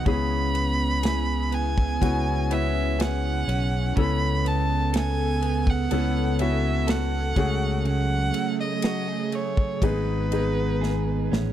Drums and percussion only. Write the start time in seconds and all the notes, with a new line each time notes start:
0.06 kick, ride
0.55 ride
1.03 snare, ride
1.52 ride
1.78 kick
2.02 kick, ride
2.51 ride
3.00 snare, ride
3.49 ride
3.97 kick, ride
4.46 ride
4.94 snare, ride
5.42 ride
5.67 kick
5.91 ride
6.39 ride
6.88 snare, ride
7.36 kick, ride
7.85 ride
8.34 ride
8.82 snare, ride
9.32 ride
9.57 kick
9.82 kick, ride
10.32 ride
10.83 snare
11.33 snare